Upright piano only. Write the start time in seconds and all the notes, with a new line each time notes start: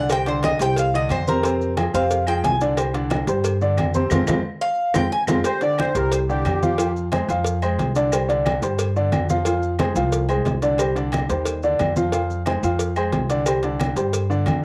0.10 G3 G4 C5
0.27 D3 D4 D5
0.61 G3 G4 C5
0.94 D3 D4 D5
1.27 C3 C4 C5
1.44 C3 C4 C5
1.77 F3 F4 G#4
1.94 C3 C4 C5
2.28 F3 F4 G#4
2.61 D3 D4 D5
2.78 G3 G4 C5
2.94 D3 D4 D5
3.27 G3 G4 C5
3.61 D3 D4 D5
3.94 C3 C4 C5
4.11 G#3 C4 F4
4.28 G#3 C4 F4
4.94 G#3 C4 F4
5.28 G#3 C4 F4
5.46 G3 G4 C5
5.61 D3 D4 D5
5.96 G3 G4 C5
6.29 D3 D4 D5
6.62 F3 F4 F5
6.78 F3 F4 F5
7.12 G#3 G#4 C5
7.30 F3 F4 F5
7.63 G#3 G#4 C5
7.96 D3 D4 D5
8.13 G3 G4 C5
8.28 D3 D4 D5
8.63 G3 G4 C5
8.96 D3 D4 D5
9.30 F3 F4 F5
9.46 F3 F4 F5
9.80 G#3 G#4 C5
9.96 F3 F4 F5
10.29 G#3 G#4 C5
10.62 D3 D4 D5
10.79 G3 G4 C5
10.95 D3 D4 D5
11.29 G3 G4 C5
11.64 D3 D4 D5
11.96 F3 F4 F5
12.13 F3 F4 F5
12.46 G#3 G#4 C5
12.64 F3 F4 F5
12.97 G#3 G#4 C5
13.30 D3 D4 D5
13.47 G3 G4 C5
13.64 D3 D4 D5
13.96 G3 G4 C5
14.30 D3 D4 D5